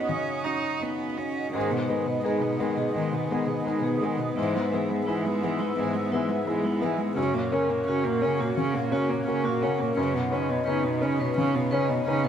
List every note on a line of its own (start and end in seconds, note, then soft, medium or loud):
0.00 1.57 F#2 soft
0.00 1.55 C#4 medium
0.00 0.81 D#4 soft
0.00 0.45 F#4 soft
0.00 1.56 F#4 medium
0.00 1.15 C#5 soft
0.00 1.53 D#5 soft
0.00 1.58 D#5 soft
0.08 0.68 C#3 soft
0.08 0.46 C#4 soft
0.44 0.84 D#4 soft
0.44 1.04 F#4 soft
0.81 1.19 B3 soft
0.81 1.40 D#4 soft
1.17 1.53 C#4 soft
1.17 1.54 F#4 soft
1.53 2.92 G#2 soft
1.53 1.72 D#3 soft
1.53 1.72 G#3 soft
1.53 7.12 B3 soft
1.53 1.65 G#4 medium
1.53 7.13 G#4 medium
1.53 4.32 D#5 medium
1.71 1.91 B2 soft
1.71 1.90 B3 soft
1.71 1.82 D#5 soft
1.89 2.09 D#3 soft
1.89 2.07 G#3 soft
1.89 2.22 B3 soft
1.89 2.00 B4 soft
1.89 2.22 B4 soft
2.06 2.24 B2 soft
2.06 2.24 B3 soft
2.06 2.18 B4 soft
2.24 2.43 D#3 soft
2.24 2.44 G#3 soft
2.24 2.58 D#4 soft
2.24 2.36 G#4 medium
2.24 2.58 B4 soft
2.42 2.61 B2 soft
2.42 2.62 B3 soft
2.42 2.53 B4 soft
2.60 2.80 D#3 soft
2.60 2.79 G#3 soft
2.60 2.93 B3 soft
2.60 2.93 B4 soft
2.77 2.94 B2 soft
2.77 2.95 B3 soft
2.77 2.89 G#4 medium
2.94 3.14 D#3 soft
2.94 3.52 D#3 soft
2.94 3.16 G#3 soft
3.12 3.30 B2 soft
3.12 3.32 B3 soft
3.29 3.48 D#3 soft
3.29 3.50 G#3 soft
3.29 3.63 B3 soft
3.29 3.42 G#4 medium
3.29 3.64 B4 soft
3.47 3.63 B2 soft
3.47 3.65 B3 soft
3.47 3.59 B4 soft
3.64 3.83 D#3 soft
3.64 3.85 G#3 soft
3.64 3.98 D#4 soft
3.64 3.77 B4 soft
3.64 3.98 B4 soft
3.81 4.02 B2 soft
3.81 4.03 B3 soft
3.81 3.94 G#4 medium
4.00 4.21 D#3 soft
4.00 4.21 G#3 soft
4.00 4.34 B3 soft
4.00 4.34 B4 soft
4.00 4.11 G#5 soft
4.19 4.36 B2 soft
4.19 4.37 B3 soft
4.19 4.30 B4 soft
4.35 5.74 G#2 soft
4.35 4.57 E3 soft
4.35 4.57 G#3 soft
4.35 4.47 E4 medium
4.35 7.16 E5 medium
4.53 4.74 G#3 soft
4.53 4.74 B3 soft
4.53 4.64 B4 soft
4.72 4.91 E3 soft
4.72 4.91 G#3 soft
4.72 5.05 B3 soft
4.72 4.82 G#4 soft
4.72 5.05 B4 soft
4.89 5.06 G#3 soft
4.89 5.07 B3 soft
4.89 4.99 G#4 soft
5.06 5.27 E3 soft
5.06 5.27 G#3 soft
5.06 5.17 E4 medium
5.06 5.39 E4 soft
5.06 5.39 B4 soft
5.24 5.43 G#3 soft
5.24 5.45 B3 soft
5.24 5.35 G#4 soft
5.42 5.60 E3 soft
5.42 5.63 G#3 soft
5.42 5.75 B3 soft
5.42 5.75 B4 soft
5.58 5.76 G#3 soft
5.58 5.78 B3 soft
5.58 5.70 E4 medium
5.77 7.14 G#2 soft
5.77 5.95 E3 soft
5.77 5.98 G#3 soft
5.93 6.12 G#3 soft
5.93 6.15 B3 soft
6.11 6.29 E3 soft
6.11 6.32 G#3 soft
6.11 6.44 B3 soft
6.11 6.23 E4 medium
6.11 6.44 B4 soft
6.28 6.45 G#3 soft
6.28 6.47 B3 soft
6.28 6.40 G#4 soft
6.46 6.65 E3 soft
6.46 6.67 G#3 soft
6.46 6.78 E4 soft
6.46 6.58 G#4 soft
6.46 6.79 B4 soft
6.63 6.82 G#3 soft
6.63 6.84 B3 soft
6.63 6.74 E4 medium
6.81 6.99 E3 soft
6.81 7.01 G#3 soft
6.81 7.13 B3 soft
6.81 7.14 B4 soft
6.81 6.92 E5 soft
6.97 7.15 G#3 soft
6.97 7.16 B3 soft
6.97 7.10 G#4 soft
7.16 8.54 F#2 soft
7.16 7.35 C#3 medium
7.16 9.97 A#3 medium
7.16 7.36 C#4 soft
7.16 7.28 F#4 medium
7.16 9.97 F#4 medium
7.16 12.28 C#5 medium
7.33 7.53 A#2 soft
7.33 7.54 A#3 soft
7.33 7.45 C#5 soft
7.52 7.71 C#3 soft
7.52 7.84 C#4 soft
7.52 7.71 C#4 soft
7.52 7.63 A#4 soft
7.52 7.84 A#4 soft
7.70 7.87 A#2 soft
7.70 7.86 A#3 soft
7.70 7.81 A#4 soft
7.87 8.08 C#3 soft
7.87 8.06 C#4 soft
7.87 7.98 F#4 medium
7.87 8.20 F#4 soft
7.87 8.20 A#4 soft
8.04 8.26 A#2 soft
8.04 8.23 A#3 soft
8.04 8.16 A#4 soft
8.22 8.43 C#3 soft
8.22 8.54 C#4 soft
8.22 8.42 C#4 soft
8.22 8.54 A#4 soft
8.40 8.58 A#2 soft
8.40 8.57 A#3 soft
8.40 8.51 F#4 medium
8.57 9.13 C#3 soft
8.57 8.79 C#3 soft
8.57 8.75 C#4 soft
8.74 8.96 A#2 soft
8.74 8.93 A#3 soft
8.92 9.14 C#3 soft
8.92 9.23 C#4 soft
8.92 9.11 C#4 soft
8.92 9.03 F#4 medium
8.92 9.24 A#4 soft
9.09 9.29 A#2 soft
9.09 9.26 A#3 soft
9.09 9.20 A#4 soft
9.27 9.49 C#3 soft
9.27 9.46 C#4 soft
9.27 9.59 F#4 soft
9.27 9.38 A#4 soft
9.27 9.59 A#4 soft
9.44 9.66 A#2 soft
9.44 9.64 A#3 soft
9.44 9.55 F#4 medium
9.62 9.84 C#3 soft
9.62 9.80 C#4 soft
9.62 9.94 C#4 soft
9.62 9.94 A#4 soft
9.62 9.73 F#5 soft
9.79 9.98 A#2 soft
9.79 9.96 A#3 soft
9.79 9.90 A#4 soft
9.96 11.33 F#2 medium
9.96 10.17 C#3 medium
9.96 12.28 B3 medium
9.96 10.15 C#4 soft
9.96 12.28 D#4 medium
9.96 10.07 B4 medium
10.13 10.35 B2 soft
10.13 10.33 B3 soft
10.13 10.24 F#5 soft
10.31 10.51 C#3 soft
10.31 10.51 C#4 soft
10.31 10.63 C#4 soft
10.31 10.64 B4 soft
10.31 10.42 D#5 soft
10.48 10.67 B2 soft
10.48 10.66 B3 soft
10.48 10.59 D#5 soft
10.66 10.86 C#3 soft
10.66 10.85 C#4 medium
10.66 10.99 D#4 soft
10.66 10.77 B4 medium
10.66 10.99 B4 soft
10.84 11.04 B2 soft
10.84 11.03 B3 soft
10.84 10.94 D#5 soft
11.01 11.22 C#3 medium
11.01 11.20 C#4 soft
11.01 11.33 C#4 soft
11.01 11.33 B4 soft
11.19 11.37 B2 medium
11.19 11.36 B3 soft
11.19 11.30 B4 medium
11.36 11.93 C#3 soft
11.36 11.57 C#3 medium
11.36 11.56 C#4 medium
11.54 11.74 B2 soft
11.54 11.73 B3 soft
11.71 11.92 C#3 soft
11.71 11.90 C#4 soft
11.71 12.03 C#4 soft
11.71 11.82 B4 medium
11.71 12.04 B4 soft
11.88 12.07 B2 soft
11.88 12.06 B3 soft
11.88 11.99 D#5 medium
12.06 12.26 C#3 medium
12.06 12.25 C#4 medium
12.06 12.28 D#4 medium
12.06 12.28 B4 medium
12.06 12.17 D#5 medium
12.23 12.28 B2 soft
12.23 12.28 B3 soft
12.23 12.28 B4 medium